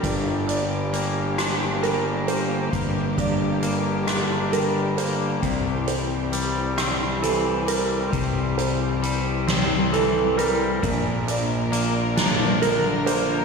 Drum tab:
HH |xxxxxx|xxxxxx|xxxxxx|xxxxxx|
SD |---r--|---r--|---r--|---o--|
BD |o-----|oo----|o-----|o-----|

HH |xxxxxx|
SD |---o--|
BD |o-----|